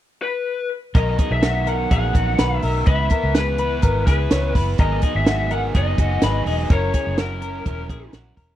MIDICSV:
0, 0, Header, 1, 6, 480
1, 0, Start_track
1, 0, Key_signature, 5, "major"
1, 0, Tempo, 478469
1, 958, Time_signature, 4, 2, 24, 8
1, 8584, End_track
2, 0, Start_track
2, 0, Title_t, "Lead electric guitar"
2, 0, Program_c, 0, 29
2, 224, Note_on_c, 0, 71, 97
2, 678, Note_off_c, 0, 71, 0
2, 971, Note_on_c, 0, 75, 82
2, 1326, Note_off_c, 0, 75, 0
2, 1330, Note_on_c, 0, 76, 82
2, 1688, Note_on_c, 0, 78, 90
2, 1697, Note_off_c, 0, 76, 0
2, 1917, Note_off_c, 0, 78, 0
2, 1929, Note_on_c, 0, 78, 107
2, 2581, Note_off_c, 0, 78, 0
2, 2581, Note_on_c, 0, 76, 107
2, 2847, Note_off_c, 0, 76, 0
2, 2881, Note_on_c, 0, 76, 88
2, 3329, Note_off_c, 0, 76, 0
2, 3367, Note_on_c, 0, 71, 67
2, 4067, Note_off_c, 0, 71, 0
2, 4080, Note_on_c, 0, 71, 73
2, 4527, Note_off_c, 0, 71, 0
2, 4821, Note_on_c, 0, 75, 92
2, 5147, Note_off_c, 0, 75, 0
2, 5183, Note_on_c, 0, 76, 103
2, 5507, Note_off_c, 0, 76, 0
2, 5536, Note_on_c, 0, 78, 93
2, 5599, Note_off_c, 0, 78, 0
2, 5790, Note_on_c, 0, 75, 104
2, 6693, Note_off_c, 0, 75, 0
2, 6754, Note_on_c, 0, 73, 83
2, 7183, Note_off_c, 0, 73, 0
2, 7228, Note_on_c, 0, 70, 62
2, 8131, Note_off_c, 0, 70, 0
2, 8584, End_track
3, 0, Start_track
3, 0, Title_t, "Clean electric guitar"
3, 0, Program_c, 1, 27
3, 953, Note_on_c, 1, 70, 90
3, 1188, Note_off_c, 1, 70, 0
3, 1192, Note_on_c, 1, 68, 67
3, 1430, Note_on_c, 1, 66, 68
3, 1437, Note_off_c, 1, 68, 0
3, 1676, Note_off_c, 1, 66, 0
3, 1676, Note_on_c, 1, 70, 73
3, 1916, Note_off_c, 1, 70, 0
3, 1920, Note_on_c, 1, 68, 84
3, 2161, Note_off_c, 1, 68, 0
3, 2166, Note_on_c, 1, 66, 70
3, 2398, Note_on_c, 1, 71, 75
3, 2404, Note_off_c, 1, 66, 0
3, 2639, Note_off_c, 1, 71, 0
3, 2643, Note_on_c, 1, 70, 65
3, 2878, Note_off_c, 1, 70, 0
3, 2882, Note_on_c, 1, 71, 103
3, 3119, Note_off_c, 1, 71, 0
3, 3123, Note_on_c, 1, 70, 69
3, 3367, Note_off_c, 1, 70, 0
3, 3367, Note_on_c, 1, 68, 71
3, 3600, Note_off_c, 1, 68, 0
3, 3604, Note_on_c, 1, 71, 68
3, 3837, Note_off_c, 1, 71, 0
3, 3841, Note_on_c, 1, 70, 80
3, 4082, Note_off_c, 1, 70, 0
3, 4089, Note_on_c, 1, 68, 86
3, 4326, Note_off_c, 1, 68, 0
3, 4330, Note_on_c, 1, 73, 82
3, 4566, Note_off_c, 1, 73, 0
3, 4570, Note_on_c, 1, 71, 65
3, 4806, Note_off_c, 1, 71, 0
3, 4811, Note_on_c, 1, 70, 93
3, 5045, Note_off_c, 1, 70, 0
3, 5049, Note_on_c, 1, 68, 77
3, 5285, Note_off_c, 1, 68, 0
3, 5287, Note_on_c, 1, 66, 73
3, 5524, Note_off_c, 1, 66, 0
3, 5529, Note_on_c, 1, 70, 77
3, 5765, Note_off_c, 1, 70, 0
3, 5772, Note_on_c, 1, 68, 82
3, 6006, Note_off_c, 1, 68, 0
3, 6012, Note_on_c, 1, 66, 66
3, 6246, Note_off_c, 1, 66, 0
3, 6257, Note_on_c, 1, 71, 70
3, 6488, Note_off_c, 1, 71, 0
3, 6494, Note_on_c, 1, 68, 65
3, 6726, Note_off_c, 1, 68, 0
3, 6736, Note_on_c, 1, 70, 88
3, 6965, Note_off_c, 1, 70, 0
3, 6969, Note_on_c, 1, 68, 68
3, 7202, Note_off_c, 1, 68, 0
3, 7202, Note_on_c, 1, 66, 74
3, 7437, Note_off_c, 1, 66, 0
3, 7441, Note_on_c, 1, 70, 72
3, 7673, Note_off_c, 1, 70, 0
3, 7685, Note_on_c, 1, 70, 72
3, 7917, Note_off_c, 1, 70, 0
3, 7921, Note_on_c, 1, 68, 79
3, 8159, Note_off_c, 1, 68, 0
3, 8168, Note_on_c, 1, 66, 74
3, 8393, Note_off_c, 1, 66, 0
3, 8397, Note_on_c, 1, 70, 68
3, 8584, Note_off_c, 1, 70, 0
3, 8584, End_track
4, 0, Start_track
4, 0, Title_t, "Overdriven electric guitar"
4, 0, Program_c, 2, 29
4, 951, Note_on_c, 2, 47, 68
4, 958, Note_on_c, 2, 54, 70
4, 961, Note_on_c, 2, 51, 69
4, 962, Note_on_c, 2, 59, 73
4, 963, Note_on_c, 2, 63, 76
4, 965, Note_on_c, 2, 70, 86
4, 1174, Note_off_c, 2, 70, 0
4, 1186, Note_on_c, 2, 70, 49
4, 1187, Note_off_c, 2, 63, 0
4, 1195, Note_off_c, 2, 59, 0
4, 1196, Note_off_c, 2, 47, 0
4, 1199, Note_off_c, 2, 54, 0
4, 1199, Note_on_c, 2, 63, 44
4, 1201, Note_off_c, 2, 51, 0
4, 1207, Note_on_c, 2, 59, 40
4, 1211, Note_on_c, 2, 54, 33
4, 1431, Note_off_c, 2, 54, 0
4, 1431, Note_on_c, 2, 47, 67
4, 1432, Note_off_c, 2, 59, 0
4, 1433, Note_off_c, 2, 70, 0
4, 1438, Note_off_c, 2, 63, 0
4, 1440, Note_on_c, 2, 51, 71
4, 1444, Note_on_c, 2, 54, 67
4, 1444, Note_on_c, 2, 59, 69
4, 1448, Note_on_c, 2, 70, 74
4, 1450, Note_on_c, 2, 63, 72
4, 1649, Note_off_c, 2, 70, 0
4, 1661, Note_on_c, 2, 70, 41
4, 1662, Note_off_c, 2, 63, 0
4, 1669, Note_off_c, 2, 59, 0
4, 1672, Note_off_c, 2, 54, 0
4, 1674, Note_on_c, 2, 63, 42
4, 1676, Note_off_c, 2, 47, 0
4, 1681, Note_off_c, 2, 51, 0
4, 1681, Note_on_c, 2, 59, 38
4, 1684, Note_on_c, 2, 54, 35
4, 1897, Note_off_c, 2, 54, 0
4, 1902, Note_off_c, 2, 59, 0
4, 1909, Note_on_c, 2, 54, 59
4, 1910, Note_off_c, 2, 63, 0
4, 1911, Note_off_c, 2, 70, 0
4, 1914, Note_on_c, 2, 59, 64
4, 1922, Note_on_c, 2, 63, 67
4, 1926, Note_on_c, 2, 70, 66
4, 2127, Note_off_c, 2, 70, 0
4, 2132, Note_off_c, 2, 63, 0
4, 2139, Note_on_c, 2, 70, 45
4, 2144, Note_on_c, 2, 63, 46
4, 2146, Note_off_c, 2, 59, 0
4, 2153, Note_off_c, 2, 54, 0
4, 2158, Note_on_c, 2, 59, 40
4, 2165, Note_on_c, 2, 54, 38
4, 2381, Note_off_c, 2, 54, 0
4, 2386, Note_on_c, 2, 47, 71
4, 2387, Note_off_c, 2, 59, 0
4, 2391, Note_off_c, 2, 70, 0
4, 2393, Note_off_c, 2, 63, 0
4, 2393, Note_on_c, 2, 54, 81
4, 2396, Note_on_c, 2, 51, 72
4, 2399, Note_on_c, 2, 59, 78
4, 2403, Note_on_c, 2, 70, 68
4, 2405, Note_on_c, 2, 63, 70
4, 2627, Note_off_c, 2, 70, 0
4, 2634, Note_off_c, 2, 63, 0
4, 2635, Note_off_c, 2, 47, 0
4, 2638, Note_off_c, 2, 54, 0
4, 2639, Note_on_c, 2, 70, 55
4, 2640, Note_off_c, 2, 51, 0
4, 2641, Note_off_c, 2, 59, 0
4, 2646, Note_on_c, 2, 63, 46
4, 2655, Note_on_c, 2, 59, 48
4, 2659, Note_on_c, 2, 54, 46
4, 2872, Note_on_c, 2, 49, 67
4, 2875, Note_off_c, 2, 59, 0
4, 2879, Note_off_c, 2, 54, 0
4, 2881, Note_off_c, 2, 70, 0
4, 2883, Note_on_c, 2, 56, 74
4, 2885, Note_off_c, 2, 63, 0
4, 2887, Note_on_c, 2, 59, 74
4, 2889, Note_on_c, 2, 64, 73
4, 2891, Note_on_c, 2, 71, 70
4, 3111, Note_off_c, 2, 71, 0
4, 3118, Note_off_c, 2, 49, 0
4, 3123, Note_off_c, 2, 56, 0
4, 3123, Note_off_c, 2, 64, 0
4, 3123, Note_on_c, 2, 71, 50
4, 3125, Note_off_c, 2, 59, 0
4, 3135, Note_on_c, 2, 64, 43
4, 3142, Note_on_c, 2, 59, 34
4, 3354, Note_off_c, 2, 59, 0
4, 3354, Note_off_c, 2, 64, 0
4, 3354, Note_on_c, 2, 56, 68
4, 3356, Note_on_c, 2, 49, 69
4, 3358, Note_off_c, 2, 71, 0
4, 3366, Note_on_c, 2, 59, 77
4, 3366, Note_on_c, 2, 64, 73
4, 3370, Note_on_c, 2, 71, 68
4, 3595, Note_off_c, 2, 71, 0
4, 3599, Note_off_c, 2, 56, 0
4, 3600, Note_off_c, 2, 49, 0
4, 3605, Note_off_c, 2, 59, 0
4, 3605, Note_off_c, 2, 64, 0
4, 3607, Note_on_c, 2, 71, 43
4, 3616, Note_on_c, 2, 64, 41
4, 3629, Note_on_c, 2, 59, 41
4, 3833, Note_off_c, 2, 59, 0
4, 3833, Note_on_c, 2, 56, 62
4, 3844, Note_off_c, 2, 64, 0
4, 3845, Note_off_c, 2, 71, 0
4, 3845, Note_on_c, 2, 59, 73
4, 3855, Note_on_c, 2, 71, 61
4, 3856, Note_on_c, 2, 64, 68
4, 4070, Note_off_c, 2, 71, 0
4, 4078, Note_off_c, 2, 56, 0
4, 4080, Note_off_c, 2, 64, 0
4, 4082, Note_on_c, 2, 71, 52
4, 4085, Note_off_c, 2, 59, 0
4, 4092, Note_on_c, 2, 64, 43
4, 4100, Note_on_c, 2, 59, 38
4, 4322, Note_off_c, 2, 71, 0
4, 4324, Note_off_c, 2, 59, 0
4, 4326, Note_on_c, 2, 49, 74
4, 4328, Note_off_c, 2, 64, 0
4, 4332, Note_on_c, 2, 56, 66
4, 4336, Note_on_c, 2, 59, 72
4, 4339, Note_on_c, 2, 64, 84
4, 4343, Note_on_c, 2, 71, 84
4, 4553, Note_off_c, 2, 71, 0
4, 4562, Note_off_c, 2, 64, 0
4, 4564, Note_off_c, 2, 49, 0
4, 4565, Note_on_c, 2, 71, 49
4, 4567, Note_off_c, 2, 56, 0
4, 4569, Note_off_c, 2, 59, 0
4, 4574, Note_on_c, 2, 64, 44
4, 4587, Note_on_c, 2, 59, 43
4, 4804, Note_off_c, 2, 59, 0
4, 4804, Note_off_c, 2, 71, 0
4, 4806, Note_on_c, 2, 44, 63
4, 4808, Note_off_c, 2, 64, 0
4, 4809, Note_on_c, 2, 51, 70
4, 4816, Note_on_c, 2, 59, 82
4, 4818, Note_on_c, 2, 54, 69
4, 4821, Note_on_c, 2, 63, 67
4, 4823, Note_on_c, 2, 68, 78
4, 5044, Note_off_c, 2, 44, 0
4, 5046, Note_off_c, 2, 51, 0
4, 5049, Note_off_c, 2, 59, 0
4, 5050, Note_off_c, 2, 54, 0
4, 5050, Note_off_c, 2, 68, 0
4, 5051, Note_off_c, 2, 63, 0
4, 5062, Note_on_c, 2, 68, 49
4, 5071, Note_on_c, 2, 63, 45
4, 5082, Note_on_c, 2, 59, 40
4, 5088, Note_on_c, 2, 54, 37
4, 5287, Note_off_c, 2, 54, 0
4, 5291, Note_off_c, 2, 59, 0
4, 5292, Note_off_c, 2, 68, 0
4, 5296, Note_off_c, 2, 63, 0
4, 5296, Note_on_c, 2, 44, 65
4, 5299, Note_on_c, 2, 54, 73
4, 5300, Note_on_c, 2, 51, 66
4, 5303, Note_on_c, 2, 59, 76
4, 5306, Note_on_c, 2, 63, 64
4, 5313, Note_on_c, 2, 68, 74
4, 5514, Note_off_c, 2, 68, 0
4, 5524, Note_off_c, 2, 63, 0
4, 5526, Note_on_c, 2, 68, 46
4, 5529, Note_off_c, 2, 44, 0
4, 5530, Note_off_c, 2, 51, 0
4, 5530, Note_off_c, 2, 54, 0
4, 5532, Note_off_c, 2, 59, 0
4, 5536, Note_on_c, 2, 63, 43
4, 5546, Note_on_c, 2, 59, 40
4, 5553, Note_on_c, 2, 54, 35
4, 5752, Note_off_c, 2, 54, 0
4, 5763, Note_off_c, 2, 68, 0
4, 5764, Note_on_c, 2, 54, 61
4, 5768, Note_off_c, 2, 59, 0
4, 5768, Note_off_c, 2, 63, 0
4, 5780, Note_on_c, 2, 59, 65
4, 5786, Note_on_c, 2, 63, 72
4, 5786, Note_on_c, 2, 68, 67
4, 6002, Note_off_c, 2, 54, 0
4, 6004, Note_off_c, 2, 68, 0
4, 6010, Note_off_c, 2, 59, 0
4, 6013, Note_off_c, 2, 63, 0
4, 6016, Note_on_c, 2, 68, 45
4, 6025, Note_on_c, 2, 63, 42
4, 6035, Note_on_c, 2, 59, 40
4, 6036, Note_on_c, 2, 54, 40
4, 6248, Note_off_c, 2, 54, 0
4, 6248, Note_off_c, 2, 68, 0
4, 6251, Note_on_c, 2, 44, 77
4, 6252, Note_off_c, 2, 63, 0
4, 6253, Note_off_c, 2, 59, 0
4, 6260, Note_on_c, 2, 51, 79
4, 6260, Note_on_c, 2, 54, 79
4, 6265, Note_on_c, 2, 59, 74
4, 6266, Note_on_c, 2, 63, 74
4, 6271, Note_on_c, 2, 68, 86
4, 6485, Note_off_c, 2, 44, 0
4, 6490, Note_off_c, 2, 51, 0
4, 6490, Note_off_c, 2, 54, 0
4, 6491, Note_off_c, 2, 68, 0
4, 6492, Note_off_c, 2, 59, 0
4, 6492, Note_off_c, 2, 63, 0
4, 6503, Note_on_c, 2, 68, 52
4, 6507, Note_on_c, 2, 63, 51
4, 6512, Note_on_c, 2, 59, 48
4, 6519, Note_on_c, 2, 54, 47
4, 6723, Note_off_c, 2, 54, 0
4, 6731, Note_off_c, 2, 68, 0
4, 6733, Note_off_c, 2, 63, 0
4, 6734, Note_off_c, 2, 59, 0
4, 6735, Note_on_c, 2, 54, 79
4, 6738, Note_on_c, 2, 61, 72
4, 6744, Note_on_c, 2, 64, 83
4, 6746, Note_on_c, 2, 70, 81
4, 6953, Note_off_c, 2, 70, 0
4, 6965, Note_on_c, 2, 70, 45
4, 6966, Note_off_c, 2, 54, 0
4, 6968, Note_off_c, 2, 61, 0
4, 6968, Note_off_c, 2, 64, 0
4, 6980, Note_on_c, 2, 64, 41
4, 6983, Note_on_c, 2, 61, 38
4, 7201, Note_off_c, 2, 70, 0
4, 7202, Note_off_c, 2, 61, 0
4, 7202, Note_on_c, 2, 54, 69
4, 7209, Note_off_c, 2, 64, 0
4, 7214, Note_on_c, 2, 61, 73
4, 7219, Note_on_c, 2, 64, 72
4, 7221, Note_on_c, 2, 70, 76
4, 7433, Note_off_c, 2, 70, 0
4, 7440, Note_off_c, 2, 54, 0
4, 7442, Note_off_c, 2, 64, 0
4, 7445, Note_off_c, 2, 61, 0
4, 7445, Note_on_c, 2, 70, 44
4, 7454, Note_on_c, 2, 64, 34
4, 7465, Note_on_c, 2, 61, 42
4, 7681, Note_off_c, 2, 70, 0
4, 7682, Note_off_c, 2, 61, 0
4, 7683, Note_off_c, 2, 64, 0
4, 7683, Note_on_c, 2, 54, 58
4, 7694, Note_on_c, 2, 61, 64
4, 7695, Note_on_c, 2, 64, 59
4, 7702, Note_on_c, 2, 70, 68
4, 7908, Note_off_c, 2, 70, 0
4, 7919, Note_off_c, 2, 54, 0
4, 7919, Note_off_c, 2, 64, 0
4, 7920, Note_on_c, 2, 70, 49
4, 7925, Note_off_c, 2, 61, 0
4, 7931, Note_on_c, 2, 64, 49
4, 7941, Note_on_c, 2, 61, 44
4, 8151, Note_on_c, 2, 54, 79
4, 8152, Note_off_c, 2, 61, 0
4, 8158, Note_off_c, 2, 70, 0
4, 8159, Note_off_c, 2, 64, 0
4, 8164, Note_on_c, 2, 61, 81
4, 8169, Note_on_c, 2, 70, 95
4, 8171, Note_on_c, 2, 64, 80
4, 8380, Note_off_c, 2, 70, 0
4, 8392, Note_on_c, 2, 70, 56
4, 8393, Note_off_c, 2, 54, 0
4, 8394, Note_off_c, 2, 64, 0
4, 8400, Note_off_c, 2, 61, 0
4, 8406, Note_on_c, 2, 64, 46
4, 8414, Note_on_c, 2, 61, 44
4, 8584, Note_off_c, 2, 61, 0
4, 8584, Note_off_c, 2, 64, 0
4, 8584, Note_off_c, 2, 70, 0
4, 8584, End_track
5, 0, Start_track
5, 0, Title_t, "Fingered electric bass"
5, 0, Program_c, 3, 33
5, 954, Note_on_c, 3, 35, 85
5, 1160, Note_off_c, 3, 35, 0
5, 1309, Note_on_c, 3, 35, 89
5, 1886, Note_off_c, 3, 35, 0
5, 1915, Note_on_c, 3, 34, 86
5, 2122, Note_off_c, 3, 34, 0
5, 2156, Note_on_c, 3, 34, 84
5, 2363, Note_off_c, 3, 34, 0
5, 2402, Note_on_c, 3, 35, 82
5, 2607, Note_off_c, 3, 35, 0
5, 2642, Note_on_c, 3, 35, 82
5, 2847, Note_off_c, 3, 35, 0
5, 2881, Note_on_c, 3, 37, 95
5, 3086, Note_off_c, 3, 37, 0
5, 3245, Note_on_c, 3, 37, 80
5, 3814, Note_off_c, 3, 37, 0
5, 3844, Note_on_c, 3, 32, 86
5, 4048, Note_off_c, 3, 32, 0
5, 4082, Note_on_c, 3, 37, 90
5, 4287, Note_off_c, 3, 37, 0
5, 4331, Note_on_c, 3, 37, 78
5, 4532, Note_off_c, 3, 37, 0
5, 4566, Note_on_c, 3, 30, 87
5, 4769, Note_off_c, 3, 30, 0
5, 4805, Note_on_c, 3, 32, 100
5, 5008, Note_off_c, 3, 32, 0
5, 5167, Note_on_c, 3, 32, 91
5, 5734, Note_off_c, 3, 32, 0
5, 5765, Note_on_c, 3, 30, 93
5, 5967, Note_off_c, 3, 30, 0
5, 6000, Note_on_c, 3, 30, 86
5, 6204, Note_off_c, 3, 30, 0
5, 6240, Note_on_c, 3, 32, 87
5, 6444, Note_off_c, 3, 32, 0
5, 6480, Note_on_c, 3, 28, 70
5, 6684, Note_off_c, 3, 28, 0
5, 6725, Note_on_c, 3, 30, 94
5, 6926, Note_off_c, 3, 30, 0
5, 7090, Note_on_c, 3, 30, 77
5, 7653, Note_off_c, 3, 30, 0
5, 7684, Note_on_c, 3, 28, 79
5, 7921, Note_off_c, 3, 28, 0
5, 7921, Note_on_c, 3, 34, 81
5, 8123, Note_off_c, 3, 34, 0
5, 8159, Note_on_c, 3, 34, 87
5, 8361, Note_off_c, 3, 34, 0
5, 8398, Note_on_c, 3, 28, 82
5, 8584, Note_off_c, 3, 28, 0
5, 8584, End_track
6, 0, Start_track
6, 0, Title_t, "Drums"
6, 953, Note_on_c, 9, 36, 108
6, 953, Note_on_c, 9, 42, 71
6, 1053, Note_off_c, 9, 36, 0
6, 1053, Note_off_c, 9, 42, 0
6, 1190, Note_on_c, 9, 42, 63
6, 1193, Note_on_c, 9, 36, 81
6, 1290, Note_off_c, 9, 42, 0
6, 1294, Note_off_c, 9, 36, 0
6, 1430, Note_on_c, 9, 38, 107
6, 1432, Note_on_c, 9, 42, 74
6, 1531, Note_off_c, 9, 38, 0
6, 1532, Note_off_c, 9, 42, 0
6, 1674, Note_on_c, 9, 42, 57
6, 1775, Note_off_c, 9, 42, 0
6, 1916, Note_on_c, 9, 42, 75
6, 1917, Note_on_c, 9, 36, 83
6, 2016, Note_off_c, 9, 42, 0
6, 2017, Note_off_c, 9, 36, 0
6, 2154, Note_on_c, 9, 36, 81
6, 2158, Note_on_c, 9, 42, 62
6, 2255, Note_off_c, 9, 36, 0
6, 2258, Note_off_c, 9, 42, 0
6, 2393, Note_on_c, 9, 42, 85
6, 2394, Note_on_c, 9, 38, 97
6, 2494, Note_off_c, 9, 38, 0
6, 2494, Note_off_c, 9, 42, 0
6, 2634, Note_on_c, 9, 46, 66
6, 2734, Note_off_c, 9, 46, 0
6, 2872, Note_on_c, 9, 42, 79
6, 2879, Note_on_c, 9, 36, 110
6, 2973, Note_off_c, 9, 42, 0
6, 2979, Note_off_c, 9, 36, 0
6, 3109, Note_on_c, 9, 42, 71
6, 3118, Note_on_c, 9, 36, 83
6, 3210, Note_off_c, 9, 42, 0
6, 3219, Note_off_c, 9, 36, 0
6, 3358, Note_on_c, 9, 38, 104
6, 3359, Note_on_c, 9, 42, 80
6, 3459, Note_off_c, 9, 38, 0
6, 3460, Note_off_c, 9, 42, 0
6, 3594, Note_on_c, 9, 42, 59
6, 3695, Note_off_c, 9, 42, 0
6, 3835, Note_on_c, 9, 42, 84
6, 3844, Note_on_c, 9, 36, 81
6, 3936, Note_off_c, 9, 42, 0
6, 3944, Note_off_c, 9, 36, 0
6, 4082, Note_on_c, 9, 36, 81
6, 4087, Note_on_c, 9, 42, 67
6, 4090, Note_on_c, 9, 38, 34
6, 4182, Note_off_c, 9, 36, 0
6, 4187, Note_off_c, 9, 42, 0
6, 4190, Note_off_c, 9, 38, 0
6, 4322, Note_on_c, 9, 38, 95
6, 4322, Note_on_c, 9, 42, 88
6, 4422, Note_off_c, 9, 42, 0
6, 4423, Note_off_c, 9, 38, 0
6, 4566, Note_on_c, 9, 36, 76
6, 4570, Note_on_c, 9, 46, 68
6, 4667, Note_off_c, 9, 36, 0
6, 4670, Note_off_c, 9, 46, 0
6, 4797, Note_on_c, 9, 42, 70
6, 4805, Note_on_c, 9, 36, 107
6, 4897, Note_off_c, 9, 42, 0
6, 4905, Note_off_c, 9, 36, 0
6, 5034, Note_on_c, 9, 42, 66
6, 5044, Note_on_c, 9, 36, 76
6, 5134, Note_off_c, 9, 42, 0
6, 5145, Note_off_c, 9, 36, 0
6, 5281, Note_on_c, 9, 38, 110
6, 5282, Note_on_c, 9, 42, 75
6, 5382, Note_off_c, 9, 38, 0
6, 5383, Note_off_c, 9, 42, 0
6, 5526, Note_on_c, 9, 42, 54
6, 5626, Note_off_c, 9, 42, 0
6, 5765, Note_on_c, 9, 42, 77
6, 5767, Note_on_c, 9, 36, 77
6, 5865, Note_off_c, 9, 42, 0
6, 5867, Note_off_c, 9, 36, 0
6, 6001, Note_on_c, 9, 36, 79
6, 6001, Note_on_c, 9, 42, 64
6, 6102, Note_off_c, 9, 36, 0
6, 6102, Note_off_c, 9, 42, 0
6, 6237, Note_on_c, 9, 42, 84
6, 6238, Note_on_c, 9, 38, 95
6, 6338, Note_off_c, 9, 38, 0
6, 6338, Note_off_c, 9, 42, 0
6, 6487, Note_on_c, 9, 46, 72
6, 6587, Note_off_c, 9, 46, 0
6, 6722, Note_on_c, 9, 42, 78
6, 6723, Note_on_c, 9, 36, 103
6, 6822, Note_off_c, 9, 42, 0
6, 6824, Note_off_c, 9, 36, 0
6, 6960, Note_on_c, 9, 42, 69
6, 6963, Note_on_c, 9, 36, 78
6, 7061, Note_off_c, 9, 42, 0
6, 7064, Note_off_c, 9, 36, 0
6, 7201, Note_on_c, 9, 38, 108
6, 7202, Note_on_c, 9, 42, 69
6, 7301, Note_off_c, 9, 38, 0
6, 7303, Note_off_c, 9, 42, 0
6, 7442, Note_on_c, 9, 42, 61
6, 7543, Note_off_c, 9, 42, 0
6, 7682, Note_on_c, 9, 42, 74
6, 7684, Note_on_c, 9, 36, 79
6, 7782, Note_off_c, 9, 42, 0
6, 7785, Note_off_c, 9, 36, 0
6, 7920, Note_on_c, 9, 36, 75
6, 7926, Note_on_c, 9, 42, 61
6, 8021, Note_off_c, 9, 36, 0
6, 8027, Note_off_c, 9, 42, 0
6, 8156, Note_on_c, 9, 42, 89
6, 8157, Note_on_c, 9, 38, 86
6, 8257, Note_off_c, 9, 38, 0
6, 8257, Note_off_c, 9, 42, 0
6, 8398, Note_on_c, 9, 46, 69
6, 8400, Note_on_c, 9, 36, 81
6, 8499, Note_off_c, 9, 46, 0
6, 8500, Note_off_c, 9, 36, 0
6, 8584, End_track
0, 0, End_of_file